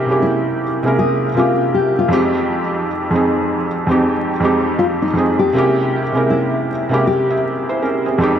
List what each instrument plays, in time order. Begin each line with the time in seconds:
Already playing: felt piano C3 G#3 A#3 C#4 E4 G4, nylon-string guitar G4
0.06 felt piano C3 G#3 A#3 C#4
0.11 felt piano E4 G4
0.22 nylon-string guitar E4
0.83 felt piano C3 G#3 A#3 C#4 E4
0.87 felt piano A#4
0.99 nylon-string guitar G#4
1.35 felt piano C3 G#3 A#3 C#4 E5, nylon-string guitar F4
1.39 felt piano G4
1.74 nylon-string guitar G4
1.99 nylon-string guitar F4
2.08 felt piano F2 G#3 C4 D#4
2.13 nylon-string guitar D#4, felt piano G4
3.11 felt piano F2 G#3 C4 D#4
3.16 felt piano G#4
3.87 felt piano F2 G#3 C4 D#4
3.92 felt piano G4
4.40 felt piano F2 G#3 C4 D#4
4.45 felt piano G4
4.79 nylon-string guitar F4
5.02 nylon-string guitar D#4
5.13 felt piano F2 G#3 C4 D#4
5.18 felt piano G#4
5.39 nylon-string guitar G4
5.53 felt piano C3 G#3 A#3 C#4 E4
5.58 felt piano G4
6.12 felt piano C3 G#3 A#3 C#4
6.16 felt piano E4 A#4
6.30 nylon-string guitar E4
6.89 felt piano C3 G#3 A#3 C#4
6.93 felt piano E4 G4
7.07 nylon-string guitar G4
7.31 felt piano G#4 E5
7.69 felt piano E4 C5
7.82 felt piano C#4 A#4
8.06 felt piano C4 G#4
8.18 felt piano F2 G#3 C4 D#4
8.23 felt piano G4